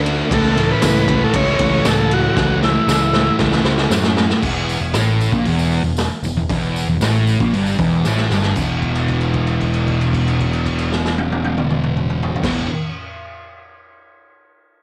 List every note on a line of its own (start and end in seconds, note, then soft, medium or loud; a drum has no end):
0.00 0.21 D2 medium
0.00 0.29 D3 medium
0.00 0.31 A3 medium
0.00 0.30 D4 loud
0.06 ride medium
0.29 0.72 C#2 loud
0.29 0.80 A2 medium
0.29 0.58 E3 medium
0.29 0.55 A3 loud
0.29 0.72 A4 loud
0.29 kick loud
0.29 ride loud
0.56 0.82 E3 medium
0.56 0.84 A3 medium
0.56 ride medium
0.71 0.82 B4 loud
0.81 1.25 C#2 medium
0.81 1.33 A2 loud
0.81 1.11 E3 loud
0.81 1.07 A3 loud
0.81 snare loud
0.81 ride loud
0.81 tambourine loud
0.86 1.24 B4 loud
1.08 1.62 E3 medium
1.08 1.58 A3 medium
1.08 kick loud
1.08 ride medium
1.24 1.36 A4 medium
1.33 1.54 C#2 loud
1.33 1.88 C#5 loud
1.33 kick loud
1.33 ride loud
1.59 1.80 C#2 loud
1.59 1.86 E3 medium
1.59 1.86 A3 medium
1.59 kick medium
1.59 ride medium
1.85 2.27 C#2 medium
1.85 2.34 A2 medium
1.85 2.36 E3 medium
1.85 2.37 A3 medium
1.85 2.13 A4 loud
1.85 snare loud
1.85 ride loud
1.85 tambourine loud
2.11 2.60 F#4 loud
2.11 ride medium
2.35 2.78 C#2 loud
2.35 2.86 A2 medium
2.35 2.64 E3 medium
2.35 2.61 A3 loud
2.35 kick loud
2.35 snare medium
2.62 2.88 E3 medium
2.62 2.89 A3 medium
2.62 3.36 E4 medium
2.62 snare medium
2.87 3.29 C#2 medium
2.87 3.39 A2 loud
2.87 3.15 E3 loud
2.87 3.12 A3 loud
2.87 snare medium
2.87 tambourine loud
3.13 3.67 E3 medium
3.13 3.64 A3 medium
3.13 snare medium
3.39 3.60 C#2 loud
3.39 kick medium
3.39 snare loud
3.52 snare medium
3.64 3.85 C#2 loud
3.64 3.91 E3 medium
3.64 3.92 A3 medium
3.64 snare loud
3.78 snare medium
3.90 4.32 F#2 medium
3.90 4.40 A2 medium
3.90 4.41 E3 medium
3.90 4.42 A3 medium
3.90 snare loud
3.90 tambourine loud
4.04 snare loud
4.17 snare loud
4.30 snare medium
4.42 4.78 E1 medium
4.42 4.80 E2 loud
4.42 kick loud
4.42 crash loud
4.42 tambourine soft
4.56 tambourine soft
4.69 open hi-hat medium
4.69 tambourine medium
4.81 4.92 E1 medium
4.81 4.94 E2 medium
4.81 tambourine soft
4.93 5.29 A1 medium
4.93 5.32 A2 loud
4.93 snare loud
4.93 open hi-hat medium
4.93 tambourine loud
5.20 open hi-hat medium
5.20 tambourine medium
5.32 5.43 A#1 loud
5.32 5.45 A#2 loud
5.32 kick loud
5.44 5.81 E1 loud
5.44 5.83 E2 loud
5.44 open hi-hat medium
5.44 tambourine soft
5.59 tambourine medium
5.71 open hi-hat medium
5.71 tambourine soft
5.83 6.08 E1 medium
5.83 6.05 E2 medium
5.83 tambourine soft
5.97 snare loud
5.97 open hi-hat medium
5.97 tambourine medium
6.10 tambourine soft
6.22 6.35 E1 medium
6.22 6.35 E2 medium
6.22 open hi-hat medium
6.22 tambourine medium
6.35 6.48 E1 medium
6.35 6.49 E2 medium
6.35 tambourine soft
6.49 6.85 E1 medium
6.49 6.88 E2 loud
6.49 kick loud
6.49 open hi-hat medium
6.49 tambourine soft
6.63 tambourine soft
6.76 open hi-hat medium
6.76 tambourine medium
6.87 7.00 E1 medium
6.87 7.02 E2 medium
6.87 tambourine soft
7.00 7.37 A1 medium
7.00 7.39 A2 loud
7.00 snare loud
7.00 open hi-hat medium
7.00 tambourine loud
7.27 open hi-hat medium
7.27 tambourine medium
7.40 7.52 A#1 loud
7.40 7.52 A#2 loud
7.40 kick loud
7.53 7.77 G1 loud
7.53 7.78 G2 loud
7.53 open hi-hat medium
7.53 tambourine soft
7.67 tambourine medium
7.79 8.03 E1 loud
7.79 8.04 E2 medium
7.79 kick loud
7.79 open hi-hat medium
7.79 tambourine soft
7.91 tambourine soft
8.04 8.29 A1 medium
8.04 8.31 A2 medium
8.04 snare medium
8.04 tambourine medium
8.17 snare medium
8.17 tambourine soft
8.30 8.55 G1 medium
8.30 8.56 G2 loud
8.30 snare medium
8.30 tambourine medium
8.43 snare medium
8.43 tambourine soft
8.55 12.33 E1 medium
8.55 12.37 E2 medium
8.55 12.38 B2 medium
8.55 kick loud
8.55 crash medium
8.55 tambourine medium
8.60 12.39 E3 loud
8.82 kick medium
8.82 crash soft
8.95 crash soft
9.08 kick medium
9.08 crash soft
9.21 crash soft
9.33 kick medium
9.33 crash soft
9.47 crash soft
9.61 kick medium
9.61 crash soft
9.73 crash soft
9.87 kick medium
9.87 crash soft
10.01 crash soft
10.13 kick medium
10.13 crash medium
10.27 crash medium
10.40 kick medium
10.40 crash soft
10.53 crash soft
10.66 kick medium
10.66 crash medium
10.79 crash medium
10.92 snare medium
11.05 snare medium
11.18 high tom loud
11.32 high tom medium
11.44 high tom medium
11.58 mid tom medium
11.70 mid tom loud
11.83 mid tom medium
11.97 mid tom medium
12.10 mid tom loud
12.23 floor tom loud
12.36 floor tom medium
12.42 12.65 E1 medium
12.42 12.66 E2 medium
12.42 12.68 B2 medium
12.42 kick loud
12.42 snare loud
12.42 crash loud
12.46 12.68 E3 medium